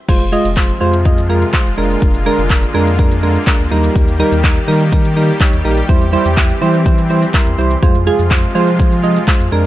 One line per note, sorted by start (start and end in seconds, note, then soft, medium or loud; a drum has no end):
0.08 0.36 F1 loud
0.08 1.76 C3 medium
0.08 1.76 F3 medium
0.08 0.23 G#3 loud
0.08 3.68 G#3 medium
0.08 0.23 F4 medium
0.08 3.68 F4 medium
0.08 0.23 C5 loud
0.08 kick loud
0.08 closed hi-hat medium
0.08 crash medium
0.08 shaker medium
0.21 shaker soft
0.32 0.47 G#3 loud
0.32 0.47 F4 loud
0.32 0.47 D#5 loud
0.32 closed hi-hat medium
0.32 shaker medium
0.45 0.72 F1 medium
0.45 shaker medium
0.57 0.71 G#3 medium
0.57 0.72 F4 medium
0.57 0.72 C5 medium
0.57 kick loud
0.57 clap loud
0.57 closed hi-hat medium
0.57 shaker medium
0.69 shaker medium
0.80 1.44 F2 medium
0.80 0.96 G#3 loud
0.80 0.96 F4 loud
0.80 0.96 C5 loud
0.80 closed hi-hat soft
0.80 shaker soft
0.93 shaker medium
1.05 1.20 G#3 medium
1.05 1.20 F4 medium
1.05 1.20 D#5 medium
1.05 kick loud
1.05 closed hi-hat medium
1.05 shaker medium
1.18 shaker medium
1.29 1.44 G#3 medium
1.29 1.44 F4 medium
1.29 1.44 A#4 medium
1.29 closed hi-hat medium
1.29 shaker medium
1.42 shaker medium
1.53 1.68 G#3 medium
1.53 1.68 F4 medium
1.53 1.68 C5 medium
1.53 kick loud
1.53 clap loud
1.53 closed hi-hat medium
1.53 shaker medium
1.66 1.75 F1 medium
1.66 shaker medium
1.77 1.96 F1 medium
1.77 3.70 D3 medium
1.77 2.16 G#3 medium
1.77 5.85 A#3 medium
1.77 2.16 D4 medium
1.77 2.17 A#4 medium
1.77 closed hi-hat medium
1.77 shaker medium
1.90 shaker medium
2.02 2.29 F1 loud
2.02 kick loud
2.02 closed hi-hat medium
2.02 shaker medium
2.14 shaker soft
2.26 2.41 G#3 loud
2.26 2.41 D4 loud
2.26 2.41 A#4 loud
2.26 closed hi-hat soft
2.26 shaker soft
2.38 2.65 F1 medium
2.38 shaker medium
2.50 2.65 G#3 medium
2.50 2.65 D4 medium
2.50 2.65 A#4 medium
2.50 kick loud
2.50 clap loud
2.50 closed hi-hat medium
2.50 shaker medium
2.63 shaker medium
2.74 3.38 F2 medium
2.74 2.89 G#3 loud
2.74 2.89 D4 loud
2.74 2.89 A#4 loud
2.74 closed hi-hat soft
2.74 shaker soft
2.87 shaker medium
2.98 3.13 G#3 medium
2.98 3.14 D4 medium
2.98 3.14 A#4 loud
2.98 kick loud
2.98 closed hi-hat medium
2.98 shaker medium
3.11 shaker medium
3.23 3.38 G#3 medium
3.23 3.38 D4 medium
3.23 3.38 A#4 medium
3.23 closed hi-hat medium
3.23 shaker medium
3.35 shaker medium
3.47 3.62 G#3 medium
3.47 3.62 D4 medium
3.47 3.62 A#4 medium
3.47 kick loud
3.47 clap loud
3.47 closed hi-hat medium
3.47 shaker medium
3.59 3.68 D2 medium
3.59 shaker medium
3.71 3.90 D#2 loud
3.71 5.87 D#3 medium
3.71 4.10 G3 medium
3.71 7.79 G3 medium
3.71 4.10 D#4 medium
3.71 7.79 G4 loud
3.71 4.10 A#4 loud
3.71 closed hi-hat soft
3.71 shaker medium
3.83 shaker medium
3.96 4.23 D#2 loud
3.96 kick loud
3.96 closed hi-hat medium
3.96 shaker medium
4.08 shaker soft
4.20 4.34 G3 loud
4.20 4.34 D#4 loud
4.20 4.35 A#4 loud
4.20 closed hi-hat medium
4.20 shaker medium
4.32 4.59 D#2 medium
4.32 shaker medium
4.44 4.59 G3 medium
4.44 4.59 D#4 medium
4.44 4.59 A#4 medium
4.44 kick loud
4.44 clap loud
4.44 closed hi-hat medium
4.44 shaker medium
4.56 shaker medium
4.68 5.31 D#3 medium
4.68 4.83 G3 loud
4.68 4.83 D#4 medium
4.68 4.83 A#4 loud
4.68 closed hi-hat soft
4.68 shaker soft
4.80 shaker medium
4.92 5.07 G3 medium
4.92 5.07 D#4 medium
4.92 5.07 A#4 medium
4.92 kick loud
4.92 closed hi-hat medium
4.92 shaker medium
5.04 shaker medium
5.16 5.31 G3 medium
5.16 5.31 D#4 medium
5.16 5.31 A#4 medium
5.16 closed hi-hat medium
5.16 shaker medium
5.29 shaker medium
5.40 5.55 G3 medium
5.40 5.55 D#4 medium
5.40 5.56 C#5 medium
5.40 kick loud
5.40 clap loud
5.40 closed hi-hat medium
5.40 shaker medium
5.53 5.62 D#2 medium
5.53 shaker medium
5.65 5.83 A#1 loud
5.65 5.80 G3 medium
5.65 5.80 D#4 medium
5.65 5.80 A#4 medium
5.65 closed hi-hat medium
5.65 shaker medium
5.77 shaker medium
5.89 6.16 E2 loud
5.89 7.81 E3 medium
5.89 6.04 G3 loud
5.89 7.81 C4 medium
5.89 6.04 E4 loud
5.89 6.04 C5 loud
5.89 kick loud
5.89 closed hi-hat medium
5.89 shaker medium
6.01 shaker soft
6.13 6.28 G3 loud
6.13 6.28 E4 loud
6.13 6.28 C5 loud
6.13 closed hi-hat soft
6.13 shaker medium
6.25 6.53 E2 medium
6.25 shaker medium
6.37 6.52 G3 medium
6.37 6.52 E4 medium
6.37 6.52 G4 loud
6.37 kick loud
6.37 clap loud
6.37 closed hi-hat medium
6.37 shaker medium
6.49 shaker medium
6.61 7.25 E3 medium
6.61 6.76 G3 loud
6.61 6.76 E4 loud
6.61 6.77 C5 loud
6.61 closed hi-hat soft
6.61 shaker medium
6.74 shaker medium
6.85 7.00 G3 medium
6.85 7.01 E4 medium
6.85 7.01 C5 medium
6.85 kick loud
6.85 closed hi-hat medium
6.85 shaker medium
6.98 shaker medium
7.10 7.25 G3 medium
7.10 7.25 E4 medium
7.10 7.25 C5 medium
7.10 closed hi-hat medium
7.10 shaker medium
7.22 shaker medium
7.34 7.49 G3 medium
7.34 7.49 E4 medium
7.34 7.49 A#4 medium
7.34 7.79 C6 medium
7.34 kick loud
7.34 clap loud
7.34 closed hi-hat medium
7.34 shaker medium
7.46 7.55 E2 medium
7.46 shaker medium
7.58 7.77 C2 medium
7.58 7.73 G3 medium
7.58 7.73 E4 medium
7.58 7.73 C5 medium
7.58 closed hi-hat medium
7.58 shaker medium
7.70 shaker medium
7.82 8.10 F2 loud
7.82 9.50 C3 medium
7.82 9.50 F3 medium
7.82 7.97 G#3 loud
7.82 9.50 G#3 medium
7.82 9.50 F4 medium
7.82 7.97 F4 medium
7.82 7.98 C5 loud
7.82 kick loud
7.82 closed hi-hat medium
7.82 shaker medium
7.95 shaker soft
8.07 8.22 G#3 loud
8.07 8.22 F4 loud
8.07 8.22 G#4 loud
8.07 closed hi-hat medium
8.07 shaker medium
8.19 8.46 F2 medium
8.19 shaker medium
8.31 8.46 G#3 medium
8.31 8.46 F4 medium
8.31 8.46 C5 medium
8.31 kick loud
8.31 clap loud
8.31 closed hi-hat medium
8.31 shaker medium
8.43 shaker medium
8.55 9.18 F3 medium
8.55 8.70 G#3 loud
8.55 8.70 F4 loud
8.55 8.70 C5 loud
8.55 closed hi-hat medium
8.55 shaker soft
8.67 shaker medium
8.79 8.94 G#3 medium
8.79 8.94 F4 medium
8.79 8.94 C5 medium
8.79 kick loud
8.79 closed hi-hat medium
8.79 shaker medium
8.92 shaker medium
9.03 9.18 G#3 medium
9.03 9.18 F4 medium
9.03 9.18 D#5 medium
9.03 closed hi-hat medium
9.03 shaker medium
9.16 shaker medium
9.27 9.42 G#3 medium
9.27 9.43 F4 medium
9.27 9.43 C5 medium
9.27 kick loud
9.27 clap loud
9.27 closed hi-hat medium
9.27 shaker medium
9.40 9.49 F2 medium
9.40 shaker medium
9.52 9.66 F2 medium
9.52 9.66 D3 medium
9.52 9.66 G#3 medium
9.52 9.66 A#3 medium
9.52 9.66 D4 medium
9.52 9.66 F4 loud
9.52 9.66 A#4 loud
9.52 closed hi-hat medium
9.52 shaker medium